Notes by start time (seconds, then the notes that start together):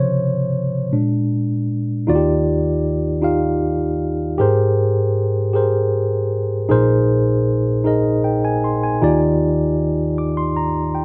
Already playing: C3 C#3 F3 C5 C#5
0.92 A#2 G#3 D4
2.07 D#2 D#3 D#4 F4 F#4 D5
2.15 G4
3.22 D#4 F4 G4 F5
4.38 G#2 G4 G#4 A#4 C5
5.53 G4 G#4 A#4 C5
6.69 A#1 A#2 D#4 G#4 A#4 C5
7.84 D#4 G#4 A#4 D#5
8.24 G5
8.45 G#5
8.64 C6
8.83 G#5
9.02 D#2 D#3 D#4 F4 G4 D5
10.18 D6
10.37 C6
10.57 A#5
10.95 G5